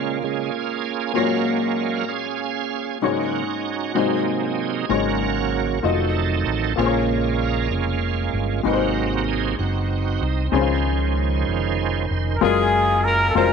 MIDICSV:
0, 0, Header, 1, 6, 480
1, 0, Start_track
1, 0, Tempo, 625000
1, 888, Time_signature, 6, 3, 24, 8
1, 10390, End_track
2, 0, Start_track
2, 0, Title_t, "Trumpet"
2, 0, Program_c, 0, 56
2, 9492, Note_on_c, 0, 70, 49
2, 9544, Note_on_c, 0, 68, 74
2, 9556, Note_off_c, 0, 70, 0
2, 10020, Note_on_c, 0, 70, 75
2, 10031, Note_off_c, 0, 68, 0
2, 10202, Note_off_c, 0, 70, 0
2, 10211, Note_on_c, 0, 69, 64
2, 10252, Note_on_c, 0, 70, 78
2, 10264, Note_off_c, 0, 69, 0
2, 10390, Note_off_c, 0, 70, 0
2, 10390, End_track
3, 0, Start_track
3, 0, Title_t, "Saxophone section"
3, 0, Program_c, 1, 65
3, 9538, Note_on_c, 1, 65, 62
3, 9542, Note_on_c, 1, 61, 62
3, 9554, Note_on_c, 1, 68, 85
3, 9992, Note_off_c, 1, 68, 0
3, 10034, Note_on_c, 1, 70, 80
3, 10225, Note_off_c, 1, 65, 0
3, 10227, Note_off_c, 1, 61, 0
3, 10260, Note_off_c, 1, 70, 0
3, 10262, Note_on_c, 1, 65, 64
3, 10263, Note_on_c, 1, 61, 60
3, 10269, Note_on_c, 1, 70, 82
3, 10390, Note_off_c, 1, 61, 0
3, 10390, Note_off_c, 1, 65, 0
3, 10390, Note_off_c, 1, 70, 0
3, 10390, End_track
4, 0, Start_track
4, 0, Title_t, "Upright piano"
4, 0, Program_c, 2, 0
4, 0, Control_c, 2, 64, 127
4, 0, Note_on_c, 2, 46, 41
4, 0, Note_on_c, 2, 58, 45
4, 0, Note_on_c, 2, 65, 40
4, 0, Note_on_c, 2, 68, 40
4, 0, Note_on_c, 2, 73, 49
4, 142, Note_off_c, 2, 46, 0
4, 854, Note_off_c, 2, 58, 0
4, 859, Note_off_c, 2, 65, 0
4, 863, Note_off_c, 2, 68, 0
4, 872, Note_on_c, 2, 58, 45
4, 880, Note_on_c, 2, 65, 42
4, 884, Note_on_c, 2, 46, 47
4, 888, Note_off_c, 2, 73, 0
4, 890, Note_on_c, 2, 66, 40
4, 897, Control_c, 2, 64, 0
4, 899, Note_on_c, 2, 73, 48
4, 1020, Control_c, 2, 64, 127
4, 1573, Note_off_c, 2, 46, 0
4, 2287, Note_off_c, 2, 58, 0
4, 2291, Note_off_c, 2, 65, 0
4, 2296, Note_off_c, 2, 66, 0
4, 2301, Note_off_c, 2, 73, 0
4, 2320, Note_on_c, 2, 56, 46
4, 2322, Note_on_c, 2, 63, 43
4, 2327, Note_on_c, 2, 44, 46
4, 2328, Note_on_c, 2, 66, 43
4, 2333, Note_on_c, 2, 73, 52
4, 2334, Control_c, 2, 64, 0
4, 2448, Control_c, 2, 64, 127
4, 3013, Note_off_c, 2, 44, 0
4, 3021, Note_off_c, 2, 56, 0
4, 3030, Note_off_c, 2, 63, 0
4, 3032, Note_off_c, 2, 66, 0
4, 3032, Note_on_c, 2, 56, 48
4, 3041, Note_on_c, 2, 63, 39
4, 3044, Note_on_c, 2, 66, 42
4, 3045, Note_on_c, 2, 44, 42
4, 3047, Note_off_c, 2, 73, 0
4, 3051, Note_on_c, 2, 72, 45
4, 3053, Control_c, 2, 64, 0
4, 3171, Control_c, 2, 64, 127
4, 3732, Note_off_c, 2, 44, 0
4, 3745, Note_off_c, 2, 56, 0
4, 3753, Note_off_c, 2, 63, 0
4, 3756, Note_off_c, 2, 66, 0
4, 3757, Note_on_c, 2, 56, 42
4, 3765, Note_on_c, 2, 63, 40
4, 3766, Note_off_c, 2, 72, 0
4, 3766, Note_on_c, 2, 44, 44
4, 3768, Note_on_c, 2, 66, 44
4, 3772, Control_c, 2, 64, 0
4, 3772, Note_on_c, 2, 73, 49
4, 3912, Control_c, 2, 64, 127
4, 4453, Note_off_c, 2, 44, 0
4, 4475, Note_on_c, 2, 57, 42
4, 4477, Note_off_c, 2, 66, 0
4, 4479, Note_off_c, 2, 56, 0
4, 4479, Note_on_c, 2, 65, 40
4, 4483, Note_off_c, 2, 63, 0
4, 4486, Note_off_c, 2, 73, 0
4, 4488, Note_on_c, 2, 66, 40
4, 4489, Note_on_c, 2, 75, 52
4, 4491, Control_c, 2, 64, 0
4, 4648, Control_c, 2, 64, 127
4, 5188, Note_off_c, 2, 65, 0
4, 5190, Note_on_c, 2, 58, 48
4, 5198, Note_off_c, 2, 57, 0
4, 5200, Note_on_c, 2, 65, 45
4, 5205, Note_off_c, 2, 66, 0
4, 5205, Note_off_c, 2, 75, 0
4, 5206, Note_on_c, 2, 46, 46
4, 5209, Note_on_c, 2, 68, 42
4, 5211, Control_c, 2, 64, 0
4, 5220, Note_on_c, 2, 72, 40
4, 5260, Note_off_c, 2, 72, 0
4, 5269, Note_on_c, 2, 73, 52
4, 5355, Control_c, 2, 64, 127
4, 5893, Note_off_c, 2, 46, 0
4, 6608, Note_off_c, 2, 58, 0
4, 6613, Note_off_c, 2, 65, 0
4, 6618, Note_off_c, 2, 68, 0
4, 6630, Note_on_c, 2, 56, 49
4, 6640, Note_on_c, 2, 63, 46
4, 6644, Note_on_c, 2, 44, 49
4, 6648, Note_on_c, 2, 66, 45
4, 6649, Note_off_c, 2, 73, 0
4, 6653, Control_c, 2, 64, 0
4, 6659, Note_on_c, 2, 71, 41
4, 6701, Note_off_c, 2, 71, 0
4, 6710, Note_on_c, 2, 72, 52
4, 6771, Control_c, 2, 64, 127
4, 7334, Note_off_c, 2, 44, 0
4, 8050, Note_off_c, 2, 56, 0
4, 8056, Note_off_c, 2, 63, 0
4, 8060, Note_off_c, 2, 66, 0
4, 8078, Note_on_c, 2, 56, 53
4, 8088, Note_on_c, 2, 61, 44
4, 8092, Note_off_c, 2, 72, 0
4, 8095, Note_on_c, 2, 49, 52
4, 8098, Control_c, 2, 64, 0
4, 8100, Note_on_c, 2, 63, 38
4, 8109, Note_on_c, 2, 72, 56
4, 8143, Note_off_c, 2, 63, 0
4, 8148, Note_on_c, 2, 65, 46
4, 8227, Control_c, 2, 64, 127
4, 8782, Note_off_c, 2, 49, 0
4, 9497, Note_off_c, 2, 56, 0
4, 9502, Note_off_c, 2, 61, 0
4, 9512, Note_off_c, 2, 72, 0
4, 9524, Note_off_c, 2, 65, 0
4, 9531, Note_on_c, 2, 56, 75
4, 9536, Note_on_c, 2, 65, 65
4, 9540, Control_c, 2, 64, 0
4, 9541, Note_on_c, 2, 54, 66
4, 9545, Note_on_c, 2, 70, 78
4, 9656, Control_c, 2, 64, 127
4, 10179, Note_off_c, 2, 56, 0
4, 10181, Note_off_c, 2, 65, 0
4, 10184, Note_off_c, 2, 54, 0
4, 10185, Note_off_c, 2, 70, 0
4, 10253, Note_on_c, 2, 56, 60
4, 10258, Note_on_c, 2, 65, 61
4, 10263, Note_on_c, 2, 54, 55
4, 10267, Note_on_c, 2, 72, 69
4, 10390, Note_off_c, 2, 54, 0
4, 10390, Note_off_c, 2, 56, 0
4, 10390, Note_off_c, 2, 65, 0
4, 10390, Note_off_c, 2, 72, 0
4, 10390, End_track
5, 0, Start_track
5, 0, Title_t, "Tonewheel organ"
5, 0, Program_c, 3, 16
5, 0, Note_on_c, 3, 49, 33
5, 0, Note_on_c, 3, 56, 46
5, 0, Note_on_c, 3, 58, 38
5, 0, Note_on_c, 3, 61, 43
5, 0, Note_on_c, 3, 65, 60
5, 143, Note_off_c, 3, 56, 0
5, 144, Note_off_c, 3, 61, 0
5, 170, Note_off_c, 3, 49, 0
5, 178, Note_off_c, 3, 65, 0
5, 180, Note_on_c, 3, 49, 31
5, 182, Note_on_c, 3, 56, 26
5, 183, Note_on_c, 3, 68, 63
5, 186, Note_on_c, 3, 61, 45
5, 188, Note_on_c, 3, 65, 45
5, 391, Note_off_c, 3, 49, 0
5, 392, Note_off_c, 3, 56, 0
5, 861, Note_off_c, 3, 58, 0
5, 865, Note_off_c, 3, 61, 0
5, 866, Note_off_c, 3, 65, 0
5, 882, Note_on_c, 3, 54, 40
5, 883, Note_on_c, 3, 70, 72
5, 885, Note_on_c, 3, 56, 34
5, 886, Note_on_c, 3, 61, 54
5, 888, Note_on_c, 3, 77, 51
5, 889, Note_on_c, 3, 58, 41
5, 916, Note_off_c, 3, 68, 0
5, 1572, Note_off_c, 3, 54, 0
5, 1573, Note_off_c, 3, 56, 0
5, 1574, Note_off_c, 3, 61, 0
5, 1575, Note_off_c, 3, 77, 0
5, 1576, Note_off_c, 3, 58, 0
5, 1597, Note_on_c, 3, 61, 45
5, 1601, Note_on_c, 3, 68, 62
5, 1601, Note_on_c, 3, 77, 45
5, 1625, Note_off_c, 3, 70, 0
5, 2289, Note_off_c, 3, 61, 0
5, 2291, Note_off_c, 3, 68, 0
5, 2291, Note_off_c, 3, 77, 0
5, 2316, Note_on_c, 3, 49, 37
5, 2324, Note_on_c, 3, 54, 34
5, 2324, Note_on_c, 3, 63, 50
5, 2325, Note_on_c, 3, 66, 62
5, 2329, Note_on_c, 3, 61, 48
5, 2330, Note_on_c, 3, 58, 39
5, 2638, Note_off_c, 3, 49, 0
5, 2642, Note_off_c, 3, 54, 0
5, 2646, Note_off_c, 3, 58, 0
5, 3012, Note_off_c, 3, 63, 0
5, 3014, Note_off_c, 3, 61, 0
5, 3029, Note_on_c, 3, 54, 31
5, 3031, Note_on_c, 3, 48, 32
5, 3036, Note_on_c, 3, 68, 59
5, 3038, Note_on_c, 3, 63, 42
5, 3039, Note_on_c, 3, 58, 41
5, 3041, Note_on_c, 3, 60, 42
5, 3064, Note_off_c, 3, 66, 0
5, 3724, Note_off_c, 3, 54, 0
5, 3725, Note_off_c, 3, 48, 0
5, 3728, Note_off_c, 3, 63, 0
5, 3729, Note_off_c, 3, 58, 0
5, 3730, Note_off_c, 3, 60, 0
5, 3759, Note_on_c, 3, 49, 38
5, 3760, Note_on_c, 3, 66, 50
5, 3761, Note_on_c, 3, 54, 32
5, 3761, Note_on_c, 3, 61, 51
5, 3761, Note_on_c, 3, 70, 62
5, 3762, Note_on_c, 3, 58, 40
5, 3780, Note_off_c, 3, 68, 0
5, 4449, Note_off_c, 3, 49, 0
5, 4450, Note_off_c, 3, 54, 0
5, 4450, Note_off_c, 3, 61, 0
5, 4450, Note_off_c, 3, 66, 0
5, 4451, Note_off_c, 3, 58, 0
5, 4475, Note_on_c, 3, 51, 37
5, 4475, Note_on_c, 3, 54, 31
5, 4482, Note_on_c, 3, 63, 42
5, 4484, Note_on_c, 3, 57, 38
5, 4484, Note_on_c, 3, 69, 58
5, 4486, Note_on_c, 3, 60, 43
5, 4503, Note_off_c, 3, 70, 0
5, 5167, Note_off_c, 3, 54, 0
5, 5168, Note_off_c, 3, 51, 0
5, 5171, Note_off_c, 3, 63, 0
5, 5172, Note_off_c, 3, 57, 0
5, 5173, Note_off_c, 3, 60, 0
5, 5201, Note_on_c, 3, 49, 39
5, 5207, Note_on_c, 3, 56, 34
5, 5209, Note_on_c, 3, 70, 64
5, 5210, Note_on_c, 3, 61, 46
5, 5212, Note_on_c, 3, 58, 44
5, 5216, Note_on_c, 3, 65, 47
5, 5224, Note_off_c, 3, 69, 0
5, 5895, Note_off_c, 3, 61, 0
5, 5898, Note_off_c, 3, 65, 0
5, 5909, Note_off_c, 3, 56, 0
5, 5911, Note_off_c, 3, 49, 0
5, 5918, Note_on_c, 3, 56, 44
5, 5920, Note_on_c, 3, 49, 32
5, 5923, Note_on_c, 3, 61, 42
5, 5925, Note_on_c, 3, 65, 54
5, 5947, Note_off_c, 3, 70, 0
5, 6137, Note_off_c, 3, 49, 0
5, 6613, Note_off_c, 3, 61, 0
5, 6614, Note_off_c, 3, 56, 0
5, 6617, Note_off_c, 3, 58, 0
5, 6645, Note_on_c, 3, 48, 40
5, 6648, Note_on_c, 3, 54, 37
5, 6651, Note_on_c, 3, 58, 42
5, 6653, Note_on_c, 3, 63, 46
5, 6654, Note_on_c, 3, 60, 48
5, 6655, Note_on_c, 3, 66, 63
5, 6666, Note_off_c, 3, 65, 0
5, 7099, Note_off_c, 3, 66, 0
5, 7127, Note_on_c, 3, 68, 67
5, 7335, Note_off_c, 3, 48, 0
5, 7336, Note_off_c, 3, 54, 0
5, 7338, Note_off_c, 3, 58, 0
5, 7339, Note_off_c, 3, 60, 0
5, 7339, Note_off_c, 3, 63, 0
5, 7349, Note_off_c, 3, 68, 0
5, 7365, Note_on_c, 3, 60, 40
5, 7365, Note_on_c, 3, 66, 56
5, 7366, Note_on_c, 3, 63, 44
5, 7845, Note_off_c, 3, 63, 0
5, 7854, Note_on_c, 3, 63, 63
5, 7860, Note_off_c, 3, 66, 0
5, 8022, Note_off_c, 3, 60, 0
5, 8031, Note_on_c, 3, 60, 43
5, 8042, Note_off_c, 3, 63, 0
5, 8079, Note_on_c, 3, 51, 44
5, 8086, Note_off_c, 3, 60, 0
5, 8086, Note_on_c, 3, 53, 43
5, 8087, Note_on_c, 3, 56, 39
5, 8091, Note_on_c, 3, 61, 53
5, 8091, Note_on_c, 3, 72, 45
5, 9259, Note_off_c, 3, 56, 0
5, 9261, Note_off_c, 3, 53, 0
5, 9261, Note_off_c, 3, 61, 0
5, 9496, Note_off_c, 3, 51, 0
5, 9502, Note_off_c, 3, 72, 0
5, 10390, End_track
6, 0, Start_track
6, 0, Title_t, "Fingered electric bass"
6, 0, Program_c, 4, 33
6, 3760, Note_on_c, 4, 32, 69
6, 4450, Note_off_c, 4, 32, 0
6, 4482, Note_on_c, 4, 29, 66
6, 4931, Note_off_c, 4, 29, 0
6, 4963, Note_on_c, 4, 33, 60
6, 5183, Note_off_c, 4, 33, 0
6, 5203, Note_on_c, 4, 34, 73
6, 5892, Note_off_c, 4, 34, 0
6, 5915, Note_on_c, 4, 29, 63
6, 6368, Note_off_c, 4, 29, 0
6, 6398, Note_on_c, 4, 31, 62
6, 6621, Note_off_c, 4, 31, 0
6, 6639, Note_on_c, 4, 32, 75
6, 7332, Note_off_c, 4, 32, 0
6, 7364, Note_on_c, 4, 30, 65
6, 7815, Note_off_c, 4, 30, 0
6, 7843, Note_on_c, 4, 36, 64
6, 8065, Note_off_c, 4, 36, 0
6, 8080, Note_on_c, 4, 37, 78
6, 8774, Note_off_c, 4, 37, 0
6, 8812, Note_on_c, 4, 29, 64
6, 9261, Note_off_c, 4, 29, 0
6, 9296, Note_on_c, 4, 29, 62
6, 9514, Note_off_c, 4, 29, 0
6, 9537, Note_on_c, 4, 30, 93
6, 10224, Note_off_c, 4, 30, 0
6, 10252, Note_on_c, 4, 29, 71
6, 10390, Note_off_c, 4, 29, 0
6, 10390, End_track
0, 0, End_of_file